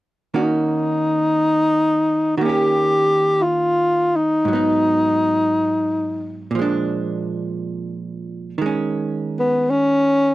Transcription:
0.34 2.36 D#3 soft
0.34 2.40 A#3 soft
0.34 2.41 C#4 soft
0.34 2.34 D#4 medium
0.34 2.41 F#4 soft
2.37 4.45 D#3 soft
2.37 4.47 A#3 soft
2.37 2.45 F#4 medium
2.43 4.49 C#4 soft
2.43 3.40 G4 medium
2.49 4.51 G4 soft
3.41 3.44 E4 soft
3.41 4.18 F4 medium
4.16 6.54 D#4 medium
4.45 6.52 G#2 soft
4.45 6.54 F#3 soft
4.53 6.56 B3 soft
4.53 6.57 D#4 soft
6.51 8.59 A#2 soft
6.55 8.58 F3 soft
6.55 8.60 G#3 soft
6.62 8.65 D4 soft
8.58 10.35 D#3 soft
8.58 10.35 G#3 soft
8.66 10.35 C#4 soft
9.39 9.72 B3 medium
9.70 10.35 C#4 medium

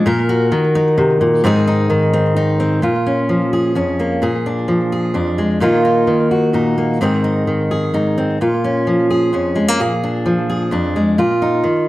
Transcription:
0.06 0.52 A#2 medium
0.06 1.42 A#4 medium
0.29 1.41 F#4 medium
0.52 1.43 D#3 medium
0.75 1.41 D#4 medium
0.98 1.20 C3 medium
1.21 1.44 A#2 medium
1.44 2.80 G#2 medium
1.44 1.89 D#3 medium
1.44 2.12 C4 medium
1.44 1.66 D#4 medium
1.44 2.81 G#4 medium
1.67 2.35 D#4 medium
1.90 2.82 D#3 medium
2.13 2.59 C4 medium
2.36 2.80 D#4 medium
2.60 2.80 C4 medium
2.82 3.75 A#2 medium
2.82 3.53 F4 soft
3.06 3.75 C#4 soft
3.29 4.68 F3 soft
3.53 4.19 G#4 soft
3.75 4.22 F2 soft
3.75 4.19 C#4 soft
4.00 4.26 A#3 soft
4.22 5.15 A#2 medium
4.22 4.91 G#4 soft
4.46 5.14 D4 soft
4.68 5.58 F3 soft
4.92 5.59 G#4 soft
5.14 5.61 F2 soft
5.14 5.58 D4 soft
5.38 5.61 G#3 soft
5.60 6.07 A#2 medium
5.60 6.06 D#3 soft
5.60 6.77 A#3 soft
5.60 5.85 D#4 soft
5.60 6.31 F4 medium
5.85 6.53 D#4 soft
6.07 7.00 D#3 soft
6.31 6.98 F#4 soft
6.53 7.00 A#2 soft
6.53 6.98 D#4 soft
6.78 6.98 A#3 soft
7.01 7.92 G#2 medium
7.01 7.46 D#3 soft
7.01 8.16 C4 soft
7.01 7.23 D#4 soft
7.01 7.70 G#4 medium
7.24 7.93 D#4 soft
7.47 8.40 D#3 soft
7.71 8.37 G#4 soft
7.94 8.37 G#2 soft
7.94 8.37 D#4 soft
8.18 8.37 C4 soft
8.41 9.33 A#2 medium
8.41 9.10 F4 soft
8.64 9.32 C#4 soft
8.87 10.25 F3 soft
9.10 9.77 G#4 soft
9.33 9.79 F2 soft
9.33 9.77 C#4 soft
9.56 9.68 G#3 soft
9.68 9.79 A#3 soft
9.80 10.72 A#2 medium
9.80 10.48 G#4 medium
10.04 10.71 D4 soft
10.26 11.15 F3 soft
10.50 11.16 G#4 soft
10.71 11.18 F2 soft
10.71 11.15 D4 soft
10.96 11.19 G#3 soft
11.18 11.64 A#2 medium
11.18 11.88 F4 medium
11.42 11.88 D#4 medium
11.64 11.88 D#3 medium

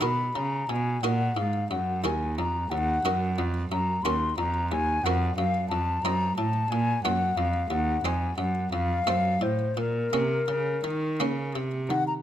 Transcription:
0.01 0.32 B2 soft
0.01 0.36 B2 soft
0.01 0.74 D#4 soft
0.01 0.75 F#4 soft
0.01 0.75 A#4 soft
0.01 0.37 B5 medium
0.35 0.66 C#3 soft
0.35 0.69 C#3 soft
0.35 0.71 A#5 medium
0.69 1.00 B2 soft
0.69 1.03 B2 medium
0.69 1.04 G#5 medium
1.03 1.34 A#2 soft
1.03 1.37 A#2 medium
1.03 1.52 D#4 soft
1.03 1.53 F#4 soft
1.03 1.53 A#4 soft
1.03 1.39 F#5 medium
1.37 1.67 G#2 soft
1.37 1.71 G#2 medium
1.37 1.70 F5 medium
1.71 2.01 F#2 soft
1.71 2.07 F#2 medium
1.71 2.04 F#5 medium
2.04 2.34 D#2 soft
2.04 2.40 D#2 medium
2.04 2.77 D#4 soft
2.04 2.77 F#4 soft
2.04 2.77 A#4 soft
2.04 2.37 G#5 medium
2.38 2.71 F2 soft
2.38 2.69 F2 soft
2.38 2.72 A#5 medium
2.70 3.04 D#2 medium
2.70 3.02 D#2 soft
2.70 3.43 F#5 medium
3.05 3.40 F#2 medium
3.05 3.35 F#2 soft
3.05 3.53 D#4 soft
3.05 3.53 F#4 soft
3.05 3.53 A#4 soft
3.38 3.71 F2 medium
3.38 3.68 F2 soft
3.71 4.04 F#2 soft
3.71 4.01 F#2 soft
3.71 4.05 A#5 medium
4.03 4.37 D#2 medium
4.03 4.35 D#2 medium
4.03 4.29 C#4 soft
4.03 4.53 F#4 soft
4.03 4.53 A#4 soft
4.03 4.37 C6 medium
4.37 4.68 F2 soft
4.37 4.73 F2 medium
4.37 4.70 A#5 medium
4.72 5.01 D#2 soft
4.72 5.04 D#2 medium
4.72 5.06 G#5 medium
5.04 5.37 F2 medium
5.04 5.35 F2 medium
5.04 5.53 C4 soft
5.04 5.54 F#4 soft
5.04 5.54 A#4 soft
5.04 5.36 F#5 medium
5.37 5.70 F#2 medium
5.37 5.68 F#2 soft
5.37 5.69 F5 medium
5.69 6.04 F2 medium
5.69 6.01 F2 soft
5.69 6.05 A5 medium
6.03 6.37 F#2 medium
6.03 6.34 F#2 medium
6.03 6.53 C4 soft
6.03 6.53 F4 soft
6.03 6.53 D#5 soft
6.03 6.36 A#5 medium
6.37 6.67 A2 soft
6.37 6.70 A2 medium
6.37 6.72 A5 medium
6.70 7.03 A#2 medium
6.70 7.01 A#2 medium
6.70 7.03 G#5 medium
7.04 7.37 F#2 medium
7.04 7.34 F#2 soft
7.04 7.53 A#3 soft
7.04 7.53 F4 soft
7.04 7.53 C#5 soft
7.04 7.38 F#5 medium
7.37 7.67 F2 soft
7.37 7.70 F2 medium
7.37 7.73 F5 medium
7.70 8.01 D#2 medium
7.70 8.03 D#2 medium
7.70 8.08 F#5 medium
8.04 8.37 F2 medium
8.04 8.35 F2 medium
8.04 8.54 C4 soft
8.04 8.54 D#4 soft
8.04 8.54 C5 soft
8.04 8.37 G#5 medium
8.37 8.69 F#2 soft
8.37 8.72 F#2 soft
8.37 8.71 F#5 medium
8.72 9.06 F2 medium
8.72 9.04 F2 soft
8.72 9.44 F5 medium
9.07 9.42 F#2 medium
9.07 9.39 F#2 soft
9.07 9.58 A3 soft
9.07 9.58 C4 soft
9.07 9.59 C5 soft
9.41 9.74 A2 soft
9.41 9.77 A2 soft
9.41 9.80 C5 medium
9.77 10.10 A#2 soft
9.77 10.13 A#2 soft
9.77 11.55 A#4 medium
10.13 10.45 C3 soft
10.13 10.48 C3 soft
10.13 10.90 A#3 soft
10.13 10.90 C#4 soft
10.13 10.90 A#4 soft
10.48 10.80 C#3 soft
10.48 10.84 C#3 soft
10.84 11.16 D#3 soft
10.84 11.21 D#3 soft
11.20 11.57 C#3 medium
11.20 11.52 C#3 soft
11.20 11.70 A#3 soft
11.20 11.71 C#4 soft
11.20 11.71 A#4 soft
11.55 11.89 C3 soft
11.55 11.86 C3 soft
11.89 12.22 D#3 medium
11.89 12.22 D#3 soft
11.89 12.06 F#5 medium
12.07 12.13 A#5 medium

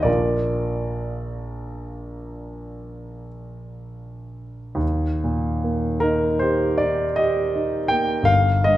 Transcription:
0.03 4.77 A#1 medium
0.03 4.77 A#3 soft
0.03 4.77 F4 soft
0.03 4.77 A#4 soft
0.03 3.28 D5 medium
4.75 8.22 D#2 medium
5.24 5.88 A#2 soft
5.64 6.27 A#3 soft
6.00 6.66 D#4 soft
6.00 6.41 A#4 medium
6.39 7.04 G4 soft
6.39 6.80 C5 medium
6.78 7.41 D#4 soft
6.78 7.18 D5 medium
7.16 7.77 G4 soft
7.16 7.90 D#5 medium
7.55 8.14 D#4 soft
7.88 8.29 A#3 soft
7.88 8.28 G5 medium
8.23 8.77 G1 medium
8.23 8.66 F5 loud
8.64 8.77 G2 soft
8.64 8.77 D#5 medium

